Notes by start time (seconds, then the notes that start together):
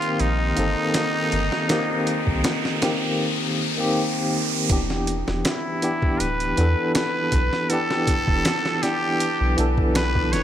Already playing: D#3 A#3 C4 F4 G4, riser
0.02 closed hi-hat
0.20 A#1 D#4, closed hi-hat
0.56 G1 D#3 A#3 C4 A4, closed hi-hat
0.94 snare, closed hi-hat
1.32 G1, closed hi-hat
1.52 snare
1.69 D#3 A#3 C4 G4, snare, closed hi-hat
2.07 closed hi-hat
2.27 C2, kick
2.44 snare, closed hi-hat
2.65 snare
2.82 D#3 A#3 C4 G4, snare, closed hi-hat
3.77 D#3 A#3 C4 G4
4.69 E1 E3 B3 D4 G4, kick, closed hi-hat
4.90 snare
5.07 closed hi-hat
5.28 E1, snare
5.45 E4, snare, closed hi-hat
5.82 E3 B3 D4 G4, closed hi-hat
6.02 kick
6.20 D1 B4, closed hi-hat
6.40 closed hi-hat
6.57 E2 E3 B3 D4 A4, closed hi-hat
6.95 B4, snare, closed hi-hat
7.32 B1, kick, closed hi-hat
7.53 snare
7.69 E3 B3 D4 G4 A4, closed hi-hat
7.91 snare
8.07 kick, closed hi-hat
8.28 E1, kick
8.45 snare, closed hi-hat
8.66 snare
8.83 E3 B3 D4 G4, snare, closed hi-hat
9.20 closed hi-hat
9.41 B1
9.57 B1 E3 B3 D4 A4, closed hi-hat
9.78 kick
9.95 B4, snare, closed hi-hat
10.15 kick
10.32 E1 C#5, snare, closed hi-hat